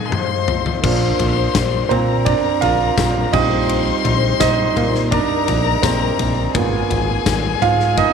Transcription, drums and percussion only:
0.12 mid tom
0.48 floor tom
0.66 floor tom
0.84 kick, crash
1.19 floor tom, ride
1.55 kick, snare, ride, tambourine
1.91 floor tom, ride
2.26 kick, ride
2.62 floor tom, ride
2.98 kick, snare, ride, tambourine
3.33 kick, floor tom, crash
3.69 ride
4.05 floor tom, ride
4.40 kick, snare, ride, tambourine
4.76 floor tom, ride
4.95 snare
5.12 kick, ride
5.48 floor tom, ride
5.83 kick, snare, ride, tambourine
6.19 floor tom, ride
6.55 kick, ride
6.90 floor tom, ride
7.26 kick, snare, ride, tambourine
7.62 floor tom, ride
7.80 snare
7.97 kick, ride

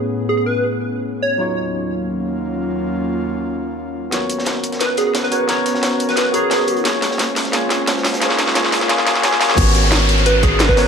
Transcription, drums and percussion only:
4.12 snare, closed hi-hat
4.30 closed hi-hat
4.39 snare
4.46 snare, closed hi-hat
4.64 closed hi-hat
4.72 snare, closed hi-hat
4.80 snare, closed hi-hat
4.97 snare, closed hi-hat
5.15 snare, closed hi-hat
5.23 snare
5.32 closed hi-hat
5.49 snare, closed hi-hat
5.66 snare, closed hi-hat
5.75 snare
5.83 snare, closed hi-hat
6.00 closed hi-hat
6.09 snare, closed hi-hat
6.16 snare, closed hi-hat
6.34 closed hi-hat
6.51 snare, closed hi-hat
6.59 snare
6.68 closed hi-hat
6.76 closed hi-hat
6.85 snare, closed hi-hat
7.02 snare, closed hi-hat
7.11 snare
7.18 snare, closed hi-hat
7.36 snare, closed hi-hat, open hi-hat
7.45 snare, closed hi-hat
7.53 snare, closed hi-hat
7.69 snare, closed hi-hat
7.87 snare, closed hi-hat
7.97 snare
8.04 snare, closed hi-hat, open hi-hat
8.13 snare, closed hi-hat
8.21 snare, closed hi-hat
8.30 snare
8.38 snare, closed hi-hat
8.47 snare
8.55 snare, closed hi-hat
8.64 snare
8.72 snare, closed hi-hat, open hi-hat
8.81 snare, closed hi-hat
8.89 snare, closed hi-hat
8.98 snare
9.07 snare, closed hi-hat
9.15 snare, closed hi-hat
9.23 snare, closed hi-hat
9.32 snare
9.41 snare, closed hi-hat, open hi-hat
9.49 snare
9.57 kick, closed hi-hat, crash
9.75 closed hi-hat
9.84 snare
9.92 snare, closed hi-hat
10.09 closed hi-hat
10.17 snare, closed hi-hat
10.26 closed hi-hat
10.43 kick, snare, closed hi-hat
10.59 snare, closed hi-hat
10.69 kick, snare
10.77 snare, closed hi-hat, open hi-hat

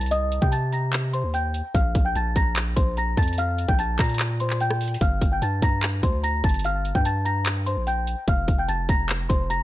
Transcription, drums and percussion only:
0.01 closed hi-hat
0.06 closed hi-hat
0.11 closed hi-hat
0.32 closed hi-hat
0.42 kick
0.52 closed hi-hat
0.72 closed hi-hat
0.93 clap, closed hi-hat
1.13 closed hi-hat
1.34 closed hi-hat
1.54 closed hi-hat
1.75 kick, closed hi-hat
1.95 kick, closed hi-hat
2.15 closed hi-hat
2.36 kick, closed hi-hat
2.56 clap, closed hi-hat
2.77 kick, closed hi-hat
2.97 closed hi-hat
3.17 kick, closed hi-hat
3.23 closed hi-hat
3.28 closed hi-hat
3.33 closed hi-hat
3.38 closed hi-hat
3.58 closed hi-hat
3.69 kick
3.79 closed hi-hat
3.99 kick, cross-stick, clap, closed hi-hat
4.04 closed hi-hat
4.09 closed hi-hat
4.14 closed hi-hat
4.19 clap, closed hi-hat
4.40 closed hi-hat
4.50 clap
4.60 closed hi-hat
4.71 cross-stick
4.81 closed hi-hat, open hi-hat
4.88 closed hi-hat
4.94 closed hi-hat
5.01 kick, closed hi-hat
5.22 kick, closed hi-hat
5.42 closed hi-hat
5.62 kick, closed hi-hat
5.83 clap, closed hi-hat
6.03 kick, closed hi-hat
6.24 closed hi-hat
6.44 kick, closed hi-hat
6.49 closed hi-hat
6.54 closed hi-hat
6.59 closed hi-hat
6.64 closed hi-hat
6.85 closed hi-hat
6.95 kick
7.05 closed hi-hat
7.26 closed hi-hat
7.46 clap, closed hi-hat
7.67 closed hi-hat
7.87 closed hi-hat
8.07 closed hi-hat
8.28 kick, closed hi-hat
8.48 kick, closed hi-hat
8.69 closed hi-hat
8.89 kick, closed hi-hat
9.09 clap, closed hi-hat
9.30 kick, closed hi-hat
9.50 closed hi-hat

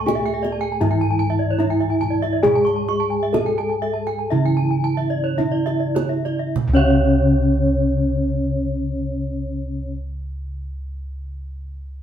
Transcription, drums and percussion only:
0.08 kendang slap, kendang high, kendang low
0.26 kendang slap
0.44 kendang slap, kendang high
0.81 kendang slap, kendang high
1.60 kendang low
1.80 kendang slap
2.03 kendang slap, kendang low
2.23 kendang slap
2.45 kendang low
2.67 kendang slap
2.89 kendang slap
3.34 kendang slap, kendang high, kendang low
3.59 kendang slap
3.83 kendang slap
4.07 kendang slap
4.31 kendang slap
5.39 kendang low
5.67 kendang slap
5.96 kendang slap, kendang high, kendang low
6.26 kendang slap
6.56 kendang low

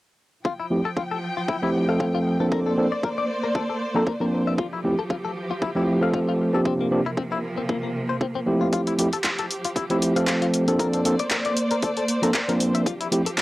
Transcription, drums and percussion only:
0.45 kick
0.97 kick
1.48 kick
2.00 kick
2.52 kick
3.03 kick
3.55 kick
4.07 kick
4.58 kick
5.10 kick
5.62 kick
6.14 kick
6.65 kick
7.17 kick
7.69 kick
8.21 kick
8.73 kick, closed hi-hat
8.87 closed hi-hat
8.99 closed hi-hat
9.13 closed hi-hat
9.24 kick, clap, closed hi-hat
9.39 closed hi-hat
9.51 closed hi-hat
9.65 closed hi-hat
9.76 kick, closed hi-hat
9.90 closed hi-hat
10.02 closed hi-hat
10.16 closed hi-hat
10.27 kick, clap, closed hi-hat
10.42 closed hi-hat
10.54 closed hi-hat
10.68 closed hi-hat
10.79 kick, closed hi-hat
10.93 closed hi-hat
11.05 closed hi-hat
11.19 closed hi-hat
11.31 kick, clap, closed hi-hat
11.45 closed hi-hat
11.57 closed hi-hat
11.71 closed hi-hat
11.82 kick, closed hi-hat
11.97 closed hi-hat
12.08 closed hi-hat
12.23 closed hi-hat
12.34 kick, clap, closed hi-hat
12.49 closed hi-hat
12.60 closed hi-hat
12.75 closed hi-hat
12.86 kick, closed hi-hat
13.01 closed hi-hat
13.12 closed hi-hat
13.26 closed hi-hat
13.38 kick, clap, closed hi-hat

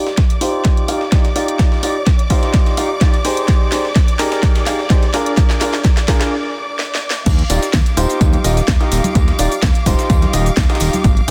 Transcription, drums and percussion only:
0.07 snare
0.17 kick, snare, closed hi-hat
0.30 closed hi-hat
0.41 closed hi-hat, open hi-hat
0.65 kick, snare, closed hi-hat
0.77 closed hi-hat
0.88 closed hi-hat, open hi-hat
1.01 snare
1.12 kick, snare, closed hi-hat
1.25 snare, closed hi-hat
1.36 closed hi-hat, open hi-hat
1.48 closed hi-hat
1.59 kick, snare, closed hi-hat
1.72 snare
1.83 closed hi-hat, open hi-hat
2.06 kick, snare, closed hi-hat
2.19 closed hi-hat
2.30 kick, closed hi-hat, open hi-hat
2.43 snare, closed hi-hat
2.54 kick, snare, closed hi-hat
2.66 snare, closed hi-hat
2.77 closed hi-hat, open hi-hat
3.01 kick, snare, closed hi-hat
3.14 closed hi-hat
3.25 open hi-hat
3.37 closed hi-hat
3.48 kick, snare, closed hi-hat
3.72 snare, closed hi-hat, open hi-hat
3.85 snare
3.96 kick, snare, closed hi-hat
4.08 closed hi-hat
4.19 snare, closed hi-hat, open hi-hat
4.32 snare, closed hi-hat
4.43 kick, snare, closed hi-hat
4.55 snare, closed hi-hat
4.66 snare, closed hi-hat, open hi-hat
4.79 snare
4.90 kick, snare, closed hi-hat
5.03 snare, closed hi-hat
5.14 snare, closed hi-hat, open hi-hat
5.26 closed hi-hat
5.37 kick, snare, closed hi-hat
5.50 snare
5.61 snare, closed hi-hat, open hi-hat
5.74 snare
5.85 kick, snare, closed hi-hat
5.97 snare, closed hi-hat
6.08 kick, snare, closed hi-hat, open hi-hat
6.21 snare, closed hi-hat
6.79 snare
6.95 snare
7.10 snare
7.26 kick, closed hi-hat, tambourine, crash, cabasa
7.38 closed hi-hat, tambourine
7.50 closed hi-hat, open hi-hat, tambourine, cabasa
7.62 snare, closed hi-hat, tambourine, cabasa
7.73 kick, snare, closed hi-hat, tambourine, cabasa
7.86 closed hi-hat, tambourine
7.97 closed hi-hat, open hi-hat, tambourine, cabasa
8.09 closed hi-hat, tambourine, cabasa
8.21 kick, closed hi-hat, tambourine, cabasa
8.33 closed hi-hat, tambourine, high conga
8.44 closed hi-hat, open hi-hat, tambourine, cabasa
8.57 snare, closed hi-hat, tambourine, cabasa
8.68 kick, snare, closed hi-hat, tambourine, cabasa
8.80 snare, closed hi-hat, tambourine
8.92 closed hi-hat, open hi-hat, tambourine, cabasa
9.04 closed hi-hat, tambourine, high conga, cabasa
9.15 kick, closed hi-hat, tambourine, cabasa
9.28 snare, closed hi-hat, tambourine
9.39 closed hi-hat, open hi-hat, tambourine, cabasa
9.52 closed hi-hat, tambourine, cabasa
9.62 kick, snare, closed hi-hat, tambourine, cabasa
9.74 closed hi-hat, tambourine
9.86 kick, closed hi-hat, open hi-hat, tambourine, cabasa
9.99 snare, closed hi-hat, tambourine, cabasa
10.10 kick, closed hi-hat, tambourine, cabasa
10.22 snare, closed hi-hat, tambourine, high conga
10.33 closed hi-hat, open hi-hat, tambourine, cabasa
10.46 closed hi-hat, tambourine, cabasa
10.57 kick, snare, closed hi-hat, tambourine, cabasa
10.63 snare, closed hi-hat
10.69 snare, closed hi-hat, tambourine
10.75 snare, closed hi-hat
10.80 open hi-hat, tambourine, cabasa
10.93 closed hi-hat, tambourine, high conga, cabasa
11.04 kick, closed hi-hat, tambourine, cabasa
11.16 closed hi-hat, tambourine

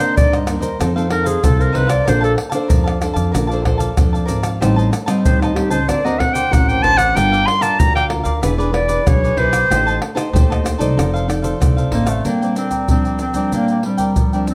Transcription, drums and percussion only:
0.00 pandeiro, tamborim, shaker
0.17 pandeiro, shaker, surdo
0.33 pandeiro, tamborim, shaker
0.47 pandeiro, tamborim, shaker
0.62 pandeiro, shaker
0.81 pandeiro, tamborim, shaker, surdo
0.98 pandeiro, shaker
1.10 pandeiro, tamborim
1.26 pandeiro, shaker
1.44 pandeiro, tamborim, shaker, surdo
1.61 pandeiro, shaker
1.75 pandeiro
1.90 pandeiro, tamborim, shaker
2.08 pandeiro, tamborim, shaker, surdo
2.24 pandeiro, shaker
2.38 pandeiro, tamborim
2.52 pandeiro, tamborim, shaker
2.70 pandeiro, shaker, surdo
2.88 pandeiro, tamborim, shaker
3.02 pandeiro, tamborim, shaker
3.16 pandeiro, shaker
3.35 pandeiro, tamborim, shaker, surdo
3.51 pandeiro, shaker
3.65 pandeiro, tamborim, surdo
3.80 pandeiro, shaker
3.97 pandeiro, tamborim, shaker, surdo
4.15 pandeiro, shaker
4.28 pandeiro, shaker
4.43 pandeiro, tamborim, shaker
4.62 pandeiro, tamborim, shaker, surdo
4.79 pandeiro, shaker
4.93 pandeiro, tamborim, shaker
5.08 pandeiro, tamborim, shaker
5.25 pandeiro, shaker, surdo
5.42 pandeiro, tamborim, shaker
5.56 pandeiro, tamborim
5.71 pandeiro, shaker
5.89 pandeiro, tamborim, shaker, surdo
6.06 pandeiro, shaker
6.20 pandeiro, tamborim, surdo
6.35 pandeiro, shaker
6.53 pandeiro, tamborim, shaker, surdo
6.69 pandeiro, shaker
6.84 pandeiro
6.99 pandeiro, tamborim, shaker
7.17 pandeiro, tamborim, shaker, surdo
7.33 pandeiro, shaker
7.48 pandeiro, tamborim
7.62 pandeiro, tamborim, shaker
7.80 pandeiro, shaker, surdo
7.97 pandeiro, tamborim, shaker
8.10 pandeiro, tamborim
8.25 pandeiro, shaker
8.43 pandeiro, tamborim, shaker, surdo
8.60 pandeiro, shaker
8.74 pandeiro, tamborim
8.89 pandeiro, shaker
9.07 pandeiro, tamborim, shaker, surdo
9.24 pandeiro, shaker
9.38 pandeiro
9.53 pandeiro, tamborim, shaker
9.72 pandeiro, tamborim, shaker, surdo
9.88 pandeiro, shaker
10.02 pandeiro, tamborim
10.17 pandeiro, tamborim, shaker
10.36 pandeiro, shaker, surdo
10.52 pandeiro, tamborim, shaker
10.66 pandeiro, tamborim, shaker
10.81 pandeiro, shaker
10.99 pandeiro, tamborim, shaker, surdo
11.16 pandeiro, shaker
11.30 pandeiro, tamborim, shaker
11.44 pandeiro, shaker
11.62 pandeiro, tamborim, shaker, surdo
11.78 pandeiro, shaker
11.92 pandeiro
12.07 pandeiro, tamborim, shaker
12.25 pandeiro, shaker, surdo
12.42 pandeiro, shaker
12.56 pandeiro, shaker
12.71 pandeiro, shaker, surdo
12.88 pandeiro, shaker, surdo
13.05 pandeiro, shaker
13.19 pandeiro, shaker
13.34 pandeiro, shaker, surdo
13.52 pandeiro, shaker, surdo
13.68 pandeiro, shaker
13.83 pandeiro
13.98 pandeiro, shaker, surdo
14.16 pandeiro, shaker, surdo
14.33 pandeiro, shaker
14.47 pandeiro, shaker

